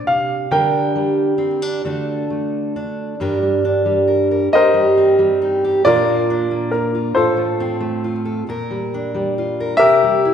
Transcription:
Already playing: steel-string acoustic guitar G3 D4 A#4
0.07 steel-string acoustic guitar C3, grand piano F5
0.51 steel-string acoustic guitar D3 G3 D4 A#4, grand piano A#4 G5
0.95 steel-string acoustic guitar G3
1.38 steel-string acoustic guitar C4
1.62 steel-string acoustic guitar D4
1.85 steel-string acoustic guitar D3 A3 D4 F#4 A4
2.30 steel-string acoustic guitar A3
2.76 steel-string acoustic guitar D4
3.20 steel-string acoustic guitar G2 G3 D4 A#4
3.42 steel-string acoustic guitar G3
3.65 steel-string acoustic guitar D4
3.85 steel-string acoustic guitar G3
4.07 steel-string acoustic guitar A#4
4.31 steel-string acoustic guitar A#4
4.52 steel-string acoustic guitar G2 G4, grand piano A#4 C5 D#5
4.74 steel-string acoustic guitar G3
4.97 steel-string acoustic guitar C4
5.19 steel-string acoustic guitar G3
5.42 steel-string acoustic guitar D#4
5.64 steel-string acoustic guitar G4
5.85 steel-string acoustic guitar A#2 A#3 D4 F4 A#4, grand piano F4 A#4 D5
6.08 steel-string acoustic guitar A#3
6.30 steel-string acoustic guitar D4
6.51 steel-string acoustic guitar A#3
6.71 steel-string acoustic guitar F4, grand piano A#4
6.95 steel-string acoustic guitar F4
7.15 steel-string acoustic guitar A2 A4, grand piano F4 A4 C5
7.37 steel-string acoustic guitar A3
7.60 steel-string acoustic guitar C4
7.80 steel-string acoustic guitar A3
8.04 steel-string acoustic guitar F4
8.25 steel-string acoustic guitar A4
8.49 steel-string acoustic guitar A#2 A#4
8.70 steel-string acoustic guitar G3
8.94 steel-string acoustic guitar D4
9.14 steel-string acoustic guitar G3
9.38 steel-string acoustic guitar F4
9.60 steel-string acoustic guitar A#4
9.77 grand piano G4 A#4 E5
9.81 steel-string acoustic guitar C3 A#4
10.03 steel-string acoustic guitar G3
10.25 steel-string acoustic guitar E4

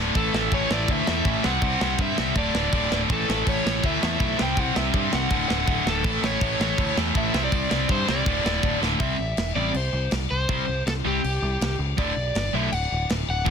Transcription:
Already playing: picked electric bass D1, distorted electric guitar D2
0.00 distorted electric guitar A2 D3
0.15 picked electric bass A1, distorted electric guitar A2 E3 A3, overdriven electric guitar A4, kick, crash
0.34 picked electric bass A1, distorted electric guitar A2 E3 A3, snare
0.52 picked electric bass A1, distorted electric guitar A2 E3 A3, overdriven electric guitar C#5, kick, crash
0.70 picked electric bass A1, distorted electric guitar A2 E3 A3, overdriven electric guitar D5, snare
0.88 picked electric bass D2, distorted electric guitar A2 E3 A3, kick, crash
0.92 overdriven electric guitar E5
1.07 picked electric bass E2, distorted electric guitar A2 E3 A3, overdriven electric guitar E5, snare
1.25 picked electric bass A1, distorted electric guitar A2 E3 A3, kick, crash
1.44 picked electric bass C2, distorted electric guitar C3 G3 C4, overdriven electric guitar F#5, snare
1.62 picked electric bass C2, distorted electric guitar C3 G3 C4, kick, crash
1.81 picked electric bass C2, distorted electric guitar C3 G3 C4, snare
1.98 picked electric bass G2, distorted electric guitar C3 G3 C4, overdriven electric guitar E5, kick, crash
2.17 picked electric bass C2, distorted electric guitar C3 G3 C4, snare
2.35 picked electric bass D1, distorted electric guitar D2 A2 D3, overdriven electric guitar D5, kick, crash
2.55 picked electric bass D1, distorted electric guitar D2 A2 D3, snare
2.73 picked electric bass D1, distorted electric guitar D2 A2 D3, overdriven electric guitar D5, kick, crash
2.91 picked electric bass D1, distorted electric guitar D2 A2 D3, snare
3.09 picked electric bass A1, distorted electric guitar A2 E3 A3, overdriven electric guitar A4, kick, crash
3.27 picked electric bass A1, distorted electric guitar A2 E3 A3, snare
3.46 picked electric bass A1, distorted electric guitar A2 E3 A3, overdriven electric guitar C#5, kick, crash
3.64 picked electric bass A1, distorted electric guitar A2 E3 A3, snare
3.83 picked electric bass D2, distorted electric guitar A2 E3 A3, overdriven electric guitar E5, kick, crash
4.01 picked electric bass E2, distorted electric guitar A2 E3 A3, overdriven electric guitar E5, snare
4.19 picked electric bass B1, distorted electric guitar A2 E3 A3, kick, crash
4.38 picked electric bass C2, distorted electric guitar C3 G3 C4, snare
4.43 overdriven electric guitar G5
4.56 picked electric bass C2, distorted electric guitar C3 G3 C4, overdriven electric guitar F#5, kick, crash
4.75 picked electric bass C2, distorted electric guitar C3 G3 C4, overdriven electric guitar E5, snare
4.93 picked electric bass G2, distorted electric guitar C3 G3 C4, kick, crash
5.12 picked electric bass C2, distorted electric guitar C3 G3 C4, overdriven electric guitar F#5, snare
5.30 picked electric bass D1, distorted electric guitar D2 A2 D3, kick, crash
5.48 picked electric bass D1, distorted electric guitar D2 A2 D3, overdriven electric guitar F#5, snare
5.66 picked electric bass D1, distorted electric guitar D2 A2 D3, kick, crash
5.85 picked electric bass D1, distorted electric guitar D2 A2 D3, overdriven electric guitar A4, snare
6.04 picked electric bass A1, distorted electric guitar A2 E3 A3, kick, crash
6.22 picked electric bass A1, distorted electric guitar A2 E3 A3, overdriven electric guitar C#5, snare
6.41 picked electric bass A1, distorted electric guitar A2 E3 A3, kick, crash
6.60 picked electric bass A1, distorted electric guitar A2 E3 A3, overdriven electric guitar C#5, snare
6.78 picked electric bass D2, distorted electric guitar A2 E3 A3, kick, crash
6.97 picked electric bass E2, distorted electric guitar A2 E3 A3, snare
7.15 picked electric bass A1, distorted electric guitar A2 E3 A3, overdriven electric guitar E5, kick, crash
7.34 picked electric bass C2, distorted electric guitar C3 G3 C4, snare
7.44 overdriven electric guitar D5
7.52 picked electric bass C2, distorted electric guitar C3 G3 C4, kick, crash
7.70 picked electric bass C2, distorted electric guitar C3 G3 C4, snare
7.88 picked electric bass G2, distorted electric guitar C3 G3 C4, overdriven electric guitar C5, kick, crash
8.07 picked electric bass C2, distorted electric guitar C3 G3 C4, overdriven electric guitar D5, snare
8.26 picked electric bass D1, distorted electric guitar D2 A2 D3, kick, crash
8.44 picked electric bass D1, distorted electric guitar D2 A2 D3, snare
8.62 picked electric bass D1, distorted electric guitar D2 A2 D3, kick, crash
8.81 picked electric bass D1, distorted electric guitar D2 A2 D3, snare
9.00 picked electric bass C2, distorted electric guitar C3 G3 C4, overdriven electric guitar E5, kick, crash
9.19 picked electric bass A1
9.37 picked electric bass E1, snare, crash
9.55 picked electric bass A1, distorted electric guitar C3 G3 C4, overdriven electric guitar D5
9.74 picked electric bass C2, overdriven electric guitar C5, crash
9.93 picked electric bass C2
10.11 picked electric bass C2, snare, crash
10.31 picked electric bass C2, overdriven electric guitar C5
10.49 picked electric bass C2, distorted electric guitar C3 G3 C4, kick, crash
10.68 picked electric bass C2
10.86 picked electric bass C2, overdriven electric guitar A4, snare, crash
11.05 picked electric bass C2, distorted electric guitar C3 G3 C4, overdriven electric guitar G4
11.24 picked electric bass C2, crash
11.42 picked electric bass C2
11.61 picked electric bass C2, snare, crash
11.79 picked electric bass C#2
11.97 distorted electric guitar D2 A2 D3, overdriven electric guitar D5, kick, crash
12.17 picked electric bass B1
12.35 picked electric bass G1, snare, crash
12.53 picked electric bass B1, distorted electric guitar D2 A2 D3, overdriven electric guitar E5
12.72 picked electric bass D1, overdriven electric guitar F#5, crash
12.92 picked electric bass D1
13.09 picked electric bass D1, snare, crash
13.29 picked electric bass D1, overdriven electric guitar F#5
13.45 picked electric bass D1, distorted electric guitar D2 A2 D3, kick, crash

